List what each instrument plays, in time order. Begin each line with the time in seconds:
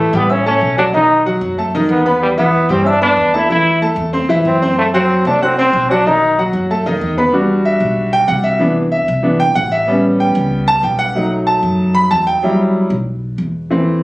Already playing: trombone A3
0.13 upright bass A2, grand piano G3 G4 G5, trombone B3
0.29 trombone C#4, grand piano E4 E5 E6
0.46 grand piano A3 A4 A5, trombone C#4
0.61 upright bass B1
0.78 grand piano F#3 F#4 F#5, trombone D4
0.94 grand piano D#3 D#4 D#5, trombone D#4
1.26 grand piano F#3 F#4 F#5
1.41 upright bass F#2
1.58 grand piano A3 A4 A5
1.75 grand piano D#3 D#4 D#5
1.89 upright bass E2, trombone B3
2.06 grand piano B3 B4 B5
2.23 trombone G3
2.37 grand piano E3 E4 E5, trombone B3
2.69 upright bass G2, grand piano G3 G4 G5, trombone C4
2.86 trombone D4, grand piano E4 E5 E6
3.01 grand piano B3 B4 B5, trombone D4
3.17 upright bass E2
3.33 grand piano A3 A4 A5, trombone E4
3.50 grand piano E3 E4 E5, trombone E4
3.82 grand piano A3 A4 A5
3.96 upright bass E2
4.13 grand piano C4 C5 C6
4.29 grand piano E3 E4 E5
4.45 upright bass F#2, trombone C4
4.62 grand piano C4 C5 C6
4.78 trombone A3
4.94 grand piano F#3 F#4 F#5, trombone C4
5.25 upright bass C2, grand piano A3 A4 A5, trombone D4
5.42 trombone C4, grand piano F#4 F#5 F#6
5.58 grand piano C4 C5 C6, trombone C4
5.73 upright bass B1
5.90 grand piano F#3 F#4 F#5, trombone D4
6.06 grand piano D#3 D#4 D#5, trombone D#4
6.38 grand piano F#3 F#4 F#5
6.53 upright bass F#2
6.70 grand piano A3 A4 A5
6.86 grand piano D#3 D#4 D#5
7.01 upright bass E2
7.17 grand piano B3 B4 B5
7.32 grand piano G3 D4 F#4
7.65 grand piano E5
7.80 upright bass B1
8.13 grand piano G5
8.28 upright bass C2, grand piano F#5
8.44 grand piano E5
8.59 grand piano E3 B3 D4
8.92 grand piano E5
9.08 upright bass C2
9.23 grand piano E3 B3 D4
9.40 grand piano G5
9.55 upright bass A1, grand piano F#5
9.72 grand piano E5
9.87 grand piano G3 B3 C#4
10.20 grand piano G5
10.35 upright bass C#2
10.68 grand piano A5
10.83 upright bass B1, grand piano G5
10.99 grand piano F#5
11.15 grand piano F#3 A3 D#4
11.47 grand piano A5
11.63 upright bass F#2
11.95 grand piano B5
12.11 upright bass E2, grand piano A5
12.27 grand piano G5
12.43 grand piano F#3 G3 E4
12.90 upright bass B1
13.38 upright bass E2
13.71 grand piano E3 A3 C4